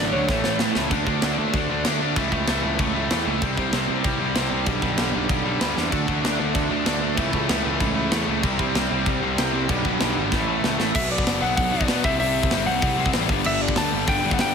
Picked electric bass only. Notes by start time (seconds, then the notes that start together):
Already playing: A1
0.14 D2
0.29 A1
0.46 A1
0.60 A2
0.76 C#2
0.91 D2
1.07 D2
1.23 D2
1.39 D2
1.54 D2
1.70 D2
1.86 D2
2.16 C#2
2.32 C#2
2.48 C#2
2.64 C#2
2.80 C#2
3.11 E2
3.27 C#2
3.42 C2
3.58 C2
3.73 C2
3.89 C2
4.05 C2
4.21 C2
4.36 C2
4.67 B1
4.83 B1
4.99 B1
5.15 B1
5.30 B1
5.61 D2
5.77 E2
5.92 D2
6.08 D2
6.24 D2
6.40 D2
6.55 D2
6.71 D2
6.86 D2
7.18 C#2
7.34 C#2
7.49 C#2
7.65 C#2
7.80 C#2
8.12 E2
8.28 C#2
8.44 C2
8.59 C2
8.74 C2
8.91 C2
9.06 C2
9.23 C2
9.39 C2
9.69 B1
9.85 B1
10.01 B1
10.17 G#1
10.32 A1
10.64 C#2
10.79 A1
10.95 B1
11.26 F#1
11.42 B1
11.58 B1
11.74 B1
11.89 B2
12.05 C2
12.20 C2
12.52 G1
12.67 C2
12.82 C2
12.98 C2
13.14 A1
13.30 G1
13.45 G1
13.77 D2
13.93 G1
14.08 G1
14.24 G1
14.40 G2